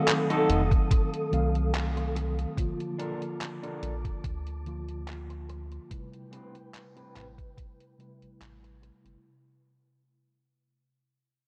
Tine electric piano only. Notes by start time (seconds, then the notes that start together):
Already playing: D#3 F#3 A3 C4 F5
1.31 D#3 F#3 A3 C4 F5
2.56 D3 F3 A#3 F4
4.65 D3 F3 A#3 F4
5.89 C3 G3 A3 E4 B4
7.98 C3 G3 A3 E4 B4